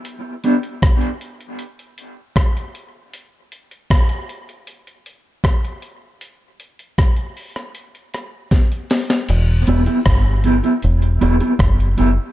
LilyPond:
<<
  \new Staff \with { instrumentName = "Clean electric guitar" } { \time 4/4 \key e \minor \tempo 4 = 78 r8 <b d' g'>16 r2. r16 | r1 | r1 | r8 <b e' g'>16 <b e' g'>16 r8 <b e' g'>16 <b e' g'>16 r8 <b e' g'>16 <b e' g'>16 r8 <b e' g'>16 r16 | }
  \new Staff \with { instrumentName = "Fingered electric bass" } { \clef bass \time 4/4 \key e \minor r1 | r1 | r1 | e,,8 e,,16 r16 g,,8. r16 e,,8 e,,16 r16 fis,,8 fis,,16 r16 | }
  \new DrumStaff \with { instrumentName = "Drums" } \drummode { \time 4/4 hh8 hh16 hh16 <hh bd ss>16 hh16 hh16 hh16 hh16 hh16 hh8 <hh bd ss>16 hh16 hh8 | hh8 hh16 hh16 <hh bd ss>16 hh16 hh16 hh16 hh16 hh16 hh8 <hh bd ss>16 hh16 hh8 | hh8 hh16 hh16 <hh bd ss>16 hh16 hho16 <hh ss>16 hh16 hh16 <hh ss>8 <hh bd sn>16 hh16 <hho sn>16 sn16 | <cymc hh>8 hh16 hh16 <hh bd ss>8 hh16 hh16 hh16 hh16 hh16 hh16 <hh bd ss>16 hh16 hh8 | }
>>